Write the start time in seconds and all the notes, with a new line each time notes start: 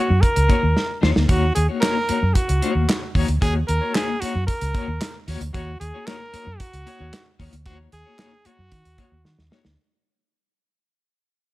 Already playing: F#4
0.09 F#2, muted clean electric guitar stroke
0.21 A#4, muted clean electric guitar stroke, kick, closed hi-hat
0.36 C#2, muted clean electric guitar stroke, closed hi-hat
0.48 A#3 D#4 F#4 C#5, kick, closed hi-hat
0.62 D#2, muted clean electric guitar stroke
0.76 muted clean electric guitar stroke, snare
0.89 muted clean electric guitar stroke
1.01 D#2 A#3 D#4 F#4 C#5, snare
1.15 D2, muted clean electric guitar stroke, snare
1.28 D#2 A#3 D#4 F#4 C#5, kick, closed hi-hat
1.54 D#2 G#4, muted clean electric guitar stroke, closed hi-hat
1.69 A#3 D#4 F#4 C#5
1.81 A#3 D#4 F#4 A#4 C#5, snare, clap, closed hi-hat
1.96 muted clean electric guitar stroke
2.09 A#3 D#4 F#4 C#5, muted fingered electric bass stroke, closed hi-hat
2.23 F#2
2.34 F#4, muted clean electric guitar stroke, kick, closed hi-hat
2.48 C#2, muted clean electric guitar stroke, closed hi-hat
2.62 A#3 D#4 F#4 C#5, closed hi-hat
2.75 D#2
2.88 muted clean electric guitar stroke, snare, clap, closed hi-hat
3.01 muted clean electric guitar stroke
3.15 D#2 A#3 D#4 F#4 C#5, kick, open hi-hat
3.28 D2, muted clean electric guitar stroke, closed hi-hat
3.41 D#2 A#3 D#4 F#4 G#4 C#5, kick, closed hi-hat
3.67 D#2 A#4, muted clean electric guitar stroke, closed hi-hat
3.81 A#3 D#4 F#4 C#5
3.94 A#3 D#4 F#4 G#4 C#5, snare, clap, closed hi-hat
4.09 muted clean electric guitar stroke
4.20 A#3 D#4 F#4 C#5, muted fingered electric bass stroke, closed hi-hat
4.35 F#2
4.47 A#4, muted clean electric guitar stroke, kick, closed hi-hat
4.61 C#2, muted clean electric guitar stroke, closed hi-hat
4.74 A#3 D#4 F#4 C#5, kick, closed hi-hat
4.88 D#2, muted clean electric guitar stroke
5.01 muted clean electric guitar stroke, snare, clap, closed hi-hat
5.15 muted clean electric guitar stroke
5.27 D#2 A#3 D#4 F#4 C#5, open hi-hat
5.41 D2, muted clean electric guitar stroke, closed hi-hat
5.53 D#2 A#3 D#4 F#4 C#5, kick, closed hi-hat
5.80 D#2 G#4, muted clean electric guitar stroke, closed hi-hat
5.94 A#3 D#4 F#4 C#5
6.06 A#3 D#4 F#4 A#4 C#5, snare, clap, closed hi-hat
6.20 muted clean electric guitar stroke
6.33 A#3 D#4 F#4 C#5, muted fingered electric bass stroke, closed hi-hat
6.47 F#2, muted clean electric guitar stroke
6.59 F#4, muted clean electric guitar stroke, kick, closed hi-hat
6.73 C#2, muted clean electric guitar stroke, closed hi-hat
6.86 A#3 D#4 F#4 C#5, closed hi-hat
7.00 D#2 A#3 D#4 F#4 C#5
7.13 snare, clap, closed hi-hat
7.26 muted clean electric guitar stroke
7.39 D#2 A#3 D#4 F#4 C#5, kick, open hi-hat
7.53 D2, muted clean electric guitar stroke, closed hi-hat
7.66 D#2 A#3 D#4 F#4 C#5, kick, closed hi-hat
7.92 D#2 G#4, muted clean electric guitar stroke, closed hi-hat
8.05 A#3 D#4 F#4 C#5
8.18 A#3 D#4 F#4 C#5, snare, clap, closed hi-hat
8.32 muted clean electric guitar stroke
8.45 A#3 D#4 F#4 C#5, muted fingered electric bass stroke, closed hi-hat
8.59 F#2, muted clean electric guitar stroke
8.72 D#3, muted clean electric guitar stroke, kick, closed hi-hat
8.85 D#2, muted clean electric guitar stroke, closed hi-hat
8.98 A#3 D#4 F#4 C#5, kick, closed hi-hat
9.12 D#2, muted clean electric guitar stroke
9.25 D#3, muted clean electric guitar stroke, snare
9.38 D#2, muted clean electric guitar stroke, snare
9.51 A#3 D#4 F#4 C#5, snare
9.65 D2, muted clean electric guitar stroke, snare